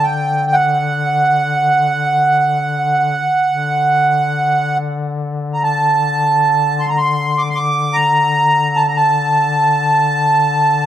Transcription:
Already playing: D3
0.03 G5
0.47 G5
0.53 F#5
3.49 D3
5.54 A#5
5.63 A5
6.80 C6
6.89 A#5
6.97 C6
7.38 D6
7.50 C6
7.55 D6
7.93 A#5
8.76 A5
8.87 A#5
8.96 A5

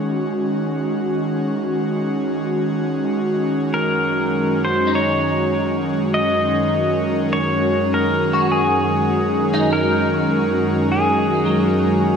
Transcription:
Already playing: D#3 G#3 C#4 F#4
3.74 F#2 A#4
4.65 C5
4.87 D#4
4.95 C#5
6.14 D#5
6.41 A#4
7.33 C#5
7.94 A#4
8.33 F#4
8.52 G#4
9.54 D#4
9.73 A#4
10.92 G#4
11.46 F#3

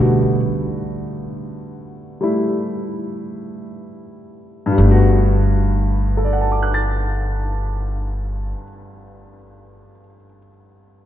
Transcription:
Already playing: B2 D3 G3 A3
0.00 B3 F#4
2.21 G3 A3 E4
4.66 G2
4.72 G3
4.78 G1 A3
4.85 B3
4.91 F#4
6.17 A4
6.24 D5
6.33 F#5
6.41 A5
6.52 D6
6.63 F#6
6.74 A6

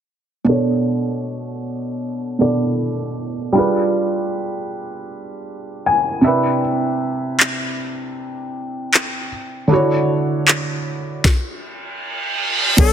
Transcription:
0.45 B2 B3 D4
0.49 A4 C#5
2.39 B2 B3 D4 A4 D5
3.52 G3 D4 F4
3.57 G#4 B4
5.86 G#5
6.21 C3 C4 D4 E5
6.26 E4 B4
7.40 clap
8.94 clap
9.68 D3 D4 E4
9.72 F#4 C#5
10.48 clap
11.24 kick, snare, reverse cymbal
12.77 B1 B2 B3 D4 A4 C#5, kick, crash

